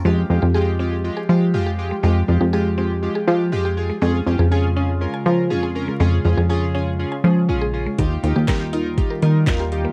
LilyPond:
<<
  \new Staff \with { instrumentName = "Analog polysynth" } { \time 4/4 \key f \minor \tempo 4 = 121 <aes f' g'>8 <aes f' g'>8 <aes f' g'>8 <aes f' g'>8 <aes f' g'>8 <aes f' g'>8 <aes f' g'>8 <aes f' g'>8 | <aes f' g'>8 <aes f' g'>8 <aes f' g'>8 <aes f' g'>8 <aes f' g'>8 <aes f' g'>8 <aes f' g'>8 <aes f' aes'>8 | <des' f' aes'>8 <des' f' g'>8 <des' f' aes'>8 <des' f' aes'>8 <des' f' bes'>8 <des' f' bes'>8 <des' f' aes'>8 <des' f' bes'>8 | <des' f' aes'>8 <des' f' aes'>8 <des' f' aes'>8 <des' f' aes'>8 <des' f' aes'>8 <des' f' aes'>8 <des' f' aes'>8 <des' f' aes'>8 |
<ees' f' g'>8 <ees' f' g'>8 <ees' f' g'>8 <ees' f' bes'>8 <ees' f' g'>8 <ees' f' bes'>8 <ees' f' bes'>8 <ees' f' g'>8 | }
  \new Staff \with { instrumentName = "Synth arpeggio sound" } { \time 4/4 \key f \minor aes16 r8 g'16 aes'16 r16 c'16 r8 aes'16 aes16 r8 g'16 r16 aes16 | aes16 r8 g'16 aes'16 r16 c'16 r8 aes'16 aes16 r8 g'16 r16 aes16 | aes16 r8 aes'16 aes''16 r16 des'16 r8 aes''16 aes16 r8 aes'16 r16 aes16 | aes16 r8 aes'16 aes''16 r16 des'16 r8 aes''16 aes16 r8 aes'16 r16 aes16 |
bes16 r8 g'16 bes'16 r16 ees'16 r8 bes'16 bes16 r8 g'16 r16 bes16 | }
  \new Staff \with { instrumentName = "Analog synth pad" } { \clef bass \time 4/4 \key f \minor << { <f g'>1~ | <f g'>1 | <des f'>1~ | <des f'>1 |
<ees f'>1 | } \\ { aes1~ | aes1~ | aes1~ | aes1 |
g1 | } >> }
  \new Staff \with { instrumentName = "Analog synth bass" } { \clef bass \time 4/4 \key f \minor f,8 f,16 f,4.~ f,16 f8 f,4 | f,8 f,16 f,4.~ f,16 f8 f,4 | f,8 f,16 f,4.~ f,16 f8 f,4 | f,8 f,16 f,4.~ f,16 f8 bes,,4 |
ees,8 ees,16 ees,4.~ ees,16 ees8 ees,4 | }
  \new DrumStaff \with { instrumentName = "Drums" } \drummode { \time 4/4 r4 r4 r4 r4 | r4 r4 r4 r4 | r4 r4 r4 r4 | r4 r4 r4 r4 |
<hh bd>8 hh8 <hc hh bd sn>8 hh8 <hh bd>8 hh8 <hc hh bd sn>8 hh8 | }
>>